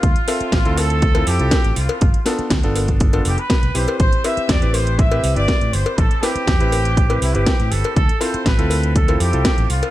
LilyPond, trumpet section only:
\new Staff \with { instrumentName = "Trumpet section" } { \time 4/4 \key a \minor \tempo 4 = 121 f'4. a'4 g'4 f'8~ | f'8 r2 g'16 b'8. c''8 | c''8 e''8 d''8 c''8 e''8. d''8. c''8 | a'8 g'2 e'16 g'8. a'8 |
a'8 c''8 b'4 a'8 g'4 f'8 | }